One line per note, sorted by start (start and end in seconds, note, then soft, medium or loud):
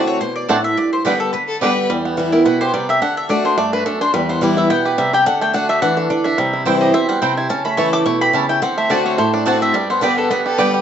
0.00 0.19 D3 medium
0.00 0.20 A3 medium
0.00 0.20 C4 medium
0.00 0.20 F#4 loud
0.07 0.20 C#5 loud
0.21 0.48 B2 medium
0.21 0.35 C5 medium
0.36 0.48 D5 medium
0.49 0.76 A2 medium
0.49 0.56 A3 medium
0.49 0.59 C4 loud
0.49 0.56 C4 medium
0.49 0.56 D4 medium
0.49 0.59 F#4 medium
0.49 0.59 D5 loud
0.49 0.64 F#5 loud
0.49 0.59 A5 loud
0.64 0.77 E5 medium
0.77 1.31 G2 medium
0.77 0.92 D5 medium
0.93 1.05 C5 medium
1.05 1.32 D3 medium
1.05 1.32 G3 medium
1.05 1.12 G3 medium
1.05 1.15 B3 medium
1.05 1.33 B3 medium
1.05 1.13 B3 medium
1.05 1.13 D4 medium
1.05 1.15 G4 medium
1.05 1.33 G4 medium
1.05 1.19 B4 medium
1.05 1.15 D5 medium
1.05 1.15 G5 loud
1.20 1.32 A4 medium
1.33 1.60 D3 medium
1.33 1.42 B4 medium
1.48 1.60 A4 loud
1.61 1.88 D3 medium
1.61 1.69 G3 medium
1.61 1.89 G3 medium
1.61 1.71 B3 medium
1.61 1.69 B3 medium
1.61 1.89 B3 medium
1.61 1.69 D4 medium
1.61 1.71 G4 medium
1.61 1.89 G4 loud
1.61 1.87 B4 loud
1.61 1.72 D5 medium
1.61 1.72 G5 loud
1.90 2.43 E2 medium
1.90 2.17 G3 medium
2.05 2.43 B3 medium
2.17 2.32 E3 medium
2.17 2.58 G3 medium
2.17 2.32 G3 medium
2.17 2.33 B3 medium
2.17 2.31 E4 medium
2.32 2.46 B3 soft
2.32 2.45 E4 medium
2.32 2.71 E4 medium
2.32 2.45 A#4 medium
2.45 2.72 B2 medium
2.45 2.86 B3 medium
2.45 2.60 B4 medium
2.61 2.88 G4 medium
2.61 2.73 C5 medium
2.74 3.00 C3 medium
2.74 3.02 G3 medium
2.74 2.89 D5 medium
2.89 3.02 G4 medium
2.89 3.02 E5 loud
3.02 3.28 D3 medium
3.02 3.28 D4 medium
3.02 3.17 F#5 loud
3.17 3.30 E5 medium
3.29 3.56 D3 medium
3.29 3.57 A3 loud
3.29 3.44 D4 medium
3.29 3.57 D4 medium
3.29 3.57 F#4 loud
3.29 3.45 D5 loud
3.45 3.72 D4 medium
3.45 3.57 C5 medium
3.57 3.84 G2 medium
3.57 3.98 A3 medium
3.57 3.73 D5 loud
3.73 3.85 D4 medium
3.73 3.85 B4 medium
3.86 4.13 F#2 loud
3.86 4.00 D4 medium
3.86 4.01 A4 medium
4.01 4.14 D4 medium
4.01 4.13 C5 loud
4.14 4.67 E2 loud
4.14 4.41 G3 medium
4.14 4.29 B4 medium
4.29 4.67 B3 medium
4.29 4.42 C5 medium
4.41 4.68 E3 medium
4.41 4.82 G3 medium
4.41 4.69 G3 medium
4.41 4.69 B3 medium
4.41 4.70 E4 medium
4.41 4.57 D5 medium
4.57 4.95 E4 medium
4.57 4.70 E5 medium
4.70 4.97 B2 medium
4.70 5.10 B3 medium
4.70 4.85 G5 loud
4.85 5.12 G4 medium
4.85 4.98 B4 medium
4.98 5.25 C3 medium
4.98 5.26 G3 medium
4.98 5.13 E5 medium
5.13 5.26 G4 medium
5.13 5.26 G5 loud
5.26 5.52 D3 loud
5.26 5.53 D4 medium
5.26 5.41 F#5 medium
5.41 5.68 A3 medium
5.41 5.54 G5 medium
5.53 5.80 D3 medium
5.53 5.81 A3 medium
5.53 5.81 D4 medium
5.53 5.82 F#4 loud
5.53 5.69 F#5 loud
5.69 6.08 A3 medium
5.69 5.82 E5 medium
5.82 6.09 E3 medium
5.82 5.96 D4 medium
5.82 5.97 F#5 loud
5.97 6.09 D4 medium
5.97 6.09 A4 medium
6.10 6.37 D3 medium
6.10 6.24 D4 medium
6.10 6.25 D5 medium
6.24 6.38 D4 medium
6.24 6.63 E5 medium
6.38 6.92 C3 medium
6.38 6.65 G3 medium
6.53 6.92 E4 medium
6.65 6.92 E3 medium
6.65 6.93 G3 medium
6.65 7.06 G3 medium
6.65 6.76 C4 medium
6.65 6.93 C4 medium
6.65 6.76 E4 medium
6.65 6.94 E4 loud
6.65 6.76 C5 medium
6.65 6.76 G5 loud
6.81 7.20 G4 medium
6.81 6.93 D#5 medium
6.94 7.21 B2 medium
6.94 7.21 C4 medium
6.94 7.08 E5 medium
7.09 7.48 G3 medium
7.09 7.21 F#5 loud
7.22 7.49 C3 medium
7.22 7.32 C4 medium
7.22 7.50 C4 medium
7.22 7.32 E4 loud
7.22 7.32 C5 loud
7.22 7.37 G5 medium
7.22 7.32 G5 loud
7.37 7.50 E4 medium
7.37 7.49 G#5 medium
7.49 8.03 C#3 loud
7.49 7.90 C#4 medium
7.49 7.64 A5 medium
7.65 7.92 A3 medium
7.65 7.77 B5 medium
7.77 8.04 E3 medium
7.77 7.88 A3 medium
7.77 8.05 A3 medium
7.77 8.05 C#4 medium
7.77 8.05 E4 medium
7.77 7.88 E4 medium
7.77 8.06 E4 loud
7.77 7.88 C#5 medium
7.77 7.88 A5 medium
7.77 7.92 C#6 loud
7.93 8.32 A3 medium
7.93 8.05 D6 loud
8.06 8.33 B2 medium
8.06 8.46 E4 medium
8.06 8.21 C#6 loud
8.21 8.60 G4 medium
8.21 8.34 B5 loud
8.33 8.60 C#3 medium
8.33 8.44 A3 medium
8.33 8.62 C#4 medium
8.33 8.44 E4 loud
8.33 8.44 C#5 medium
8.33 8.49 A5 medium
8.33 8.44 A5 loud
8.49 8.62 E4 medium
8.49 8.62 G5 medium
8.62 8.88 D3 loud
8.62 9.03 C4 medium
8.62 8.77 F#5 medium
8.78 9.16 A3 medium
8.78 8.90 E5 medium
8.90 9.17 D3 loud
8.90 9.17 A3 loud
8.90 9.00 C4 medium
8.90 9.17 C4 medium
8.90 9.33 D4 medium
8.90 9.00 F#4 medium
8.90 9.18 F#4 loud
8.90 9.05 D5 medium
8.90 9.00 D5 medium
8.90 9.00 A5 medium
9.06 9.44 C4 medium
9.06 9.18 C#5 medium
9.18 9.72 A2 medium
9.18 9.58 A3 medium
9.18 9.33 C5 medium
9.33 9.46 D4 medium
9.33 9.46 D5 medium
9.45 9.73 D3 medium
9.45 9.73 A3 loud
9.45 9.56 C4 loud
9.45 9.73 C4 medium
9.45 10.17 D4 medium
9.45 9.56 F#4 loud
9.45 9.74 F#4 loud
9.45 9.56 D5 loud
9.45 9.61 F#5 medium
9.45 9.57 A5 loud
9.62 9.74 C4 medium
9.62 9.74 E5 loud
9.74 10.28 G2 loud
9.74 10.01 G3 medium
9.74 9.89 D5 medium
9.90 10.28 B3 medium
9.90 10.02 C5 medium
10.01 10.29 D3 medium
10.01 10.43 G3 medium
10.01 10.29 G3 medium
10.01 10.12 B3 medium
10.01 10.29 B3 loud
10.01 10.12 G4 medium
10.01 10.30 G4 loud
10.01 10.17 B4 medium
10.01 10.13 D5 loud
10.01 10.13 G5 medium
10.18 10.56 D4 medium
10.18 10.30 A4 medium
10.30 10.57 D3 medium
10.30 10.71 B3 medium
10.30 10.40 B4 medium
10.46 10.73 G4 medium
10.46 10.59 A4 medium
10.58 10.81 D3 medium
10.58 10.81 G3 medium
10.58 10.68 B3 loud
10.58 10.81 B3 medium
10.58 10.68 G4 loud
10.58 10.81 G4 loud
10.58 10.81 B4 loud
10.58 10.69 D5 loud
10.58 10.69 G5 loud
10.74 10.81 G4 medium